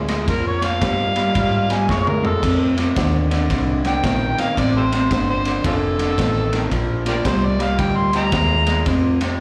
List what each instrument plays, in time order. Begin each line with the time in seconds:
Already playing: fingered electric bass D2
0.08 clean electric guitar A#2 G#3, snare, ride
0.27 fingered electric bass F2, clean electric guitar A#2 F3, harmonica A#4, kick, snare, ride
0.47 harmonica C#5
0.62 clean electric guitar A#2 F3, harmonica F5, snare, ride
0.81 fingered electric bass G2, clean electric guitar A#2 G3, kick, snare, ride
1.16 clean electric guitar A#2 G3, snare, ride
1.35 fingered electric bass G#2, clean electric guitar A#2 G3, kick, ride
1.69 clean electric guitar A#2 G3, harmonica G#5, snare, ride
1.89 fingered electric bass F#2, clean electric guitar A#2 G#3, harmonica C#5, kick, snare
2.07 harmonica A#4, mid tom
2.23 clean electric guitar A#2 G#3, harmonica A4, floor tom
2.42 clean electric guitar F2 C3, fingered electric bass F2, kick, ride, crash
2.77 clean electric guitar F2 C3, snare, ride
2.96 fingered electric bass D#2, clean electric guitar F2 D3, kick, snare, ride
3.31 clean electric guitar F2 D3, snare, ride
3.50 fingered electric bass C2, clean electric guitar F2 D3, kick, snare, ride
3.85 clean electric guitar F2 D3, harmonica G5, snare, ride
4.04 fingered electric bass A#1, clean electric guitar F2 D#3, kick, snare, ride
4.37 clean electric guitar F2 D#3, harmonica F5, snare, ride
4.57 fingered electric bass A1, clean electric guitar F2 C3, harmonica D5, kick, snare, ride
4.77 harmonica G4 A4 C5
4.92 clean electric guitar F2 C3, snare, ride
5.11 fingered electric bass G1, clean electric guitar F2 D3, harmonica C5, kick, snare, ride
5.30 harmonica C5
5.45 clean electric guitar F2 D3, snare, ride
5.64 fingered electric bass F1, clean electric guitar F2 D3, harmonica C#4 F4 A4, kick, snare, ride
5.98 clean electric guitar F2 D3, snare, ride
6.18 fingered electric bass A1, clean electric guitar F2 D#3, kick, snare, ride
6.52 clean electric guitar F2 D#3, snare, ride
6.71 fingered electric bass A#1, clean electric guitar A#2 F3, kick, ride
7.06 clean electric guitar A#2 F3, harmonica G4 A#4 D5, snare, ride
7.25 fingered electric bass C2, clean electric guitar A#2 G3, harmonica C5, kick, snare, ride
7.45 harmonica D5
7.59 clean electric guitar A#2 G3, harmonica F5, snare, ride
7.78 fingered electric bass D2, clean electric guitar A#2 G3, harmonica G5, kick, ride
7.98 harmonica C6
8.13 clean electric guitar A#2 G3, harmonica D#5 G5 A#5, snare, ride
8.32 fingered electric bass D#2, clean electric guitar A#2 G#3, kick, snare, ride
8.67 clean electric guitar A#2 G#3, snare, ride
8.86 clean electric guitar F2 C3, fingered electric bass F2, kick, snare, ride
9.21 clean electric guitar F2 C3, snare, ride